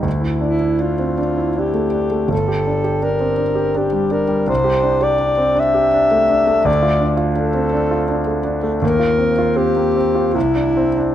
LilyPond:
<<
  \new Staff \with { instrumentName = "Alto saxophone" } { \time 3/4 \key d \minor \tempo 4 = 82 r8 e'8 f'4 g'4 | a'4 bes'4 g'8 bes'8 | c''8. d''8. e''4. | d''8. r16 a'4. r8 |
bes'4 g'4 e'4 | }
  \new Staff \with { instrumentName = "Grand piano" } { \time 3/4 \key d \minor d,16 e'16 d'16 e'16 d'16 c'16 d'16 e'16 d'16 a16 d'16 a16 | g,,16 g'16 d'16 g'16 d'16 c'16 d'16 g'16 d'16 g16 d'16 g16 | c,16 g'16 d'16 g'16 d'16 c'16 d'16 g'16 d'16 a16 d'16 a16 | d,16 f'16 d'16 f'16 d'16 c'16 d'16 f'16 d'16 a16 d'16 a16 |
ees,16 f'16 c'16 f'16 c'16 bes16 c'16 f'16 c,16 d'16 c'16 d'16 | }
>>